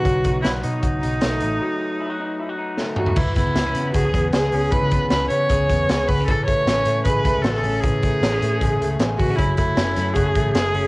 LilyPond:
<<
  \new Staff \with { instrumentName = "Viola" } { \time 4/4 \key cis \minor \tempo 4 = 154 fis'4 e'8 dis'2~ dis'8~ | dis'2. r8 fis'8 | e'8 e'4. gis'4 gis'4 | b'4 b'8 cis''2 b'8 |
a'8 cis''4. b'4 a'4 | gis'2. r8 fis'8 | e'8 e'4. gis'4 gis'4 | }
  \new Staff \with { instrumentName = "Clean electric guitar" } { \time 4/4 \key cis \minor fis8 dis'8 fis'8 dis'8 fis'8 dis'8 a8 dis'8 | fis8 dis'8 e'16 fis'16 dis'8 e'16 fis'16 dis'8 a8 dis'8 | e8 b8 b16 cis'16 b8 fis'16 gis'16 b8 gis'8 cis'8 | e8 b8 cis'8 b8 gis'8 b8 gis'8 b16 cis'16 |
e8 a8 cis'8 a8 gis'8 a8 fis'16 gis'16 cis'8 | e8 a8 b16 cis'16 a8 gis'8 a8 gis'8 b16 cis'16 | fis8 a8 cis'8 a8 fis'16 gis'16 a8 gis'8 cis'8 | }
  \new Staff \with { instrumentName = "Picked electric bass" } { \clef bass \time 4/4 \key cis \minor b,,8 b,,8 b,,8 b,8 b,,8 b,,8 b,,8 a,,8 | r1 | cis,4 cis,8 cis8 cis,8 e,8 cis,8 cis,8 | cis,4 cis,8 cis8 cis,8 e,8 cis,8 cis,8 |
a,,4 a,,8 a,8 a,,8 cis,8 a,,8 a,,8 | a,,4 a,,8 a,8 a,,8 cis,8 a,,8 a,,8 | fis,,4 fis,,8 fis,8 fis,,8 a,,8 fis,,8 fis,,8 | }
  \new DrumStaff \with { instrumentName = "Drums" } \drummode { \time 4/4 <hh bd>8 <hh bd>8 <hh sn>8 hh8 <hh bd>8 hh8 <hh sn>8 hh8 | r4 r4 r4 sn8 toml16 tomfh16 | <cymc bd>8 <hh bd>8 <hh sn>8 hh8 <hh bd>8 <hh bd>8 <hh sn>8 hho8 | <hh bd>8 <hh bd>8 <hh sn>8 hh8 <hh bd>8 <hh bd>8 <hh sn>8 <hho bd>8 |
<hh bd>8 <hh bd>8 <hh sn>8 hh8 <hh bd>8 <hh bd>8 <hh sn>8 hho8 | <hh bd>8 <hh bd>8 <hh sn>8 hh8 <hh bd>8 hh8 <hh sn>8 <hho bd>8 | <hh bd>8 <hh bd>8 <hh sn>8 <hh sn>8 <hh bd>8 <hh bd>8 <hh sn>8 hho8 | }
>>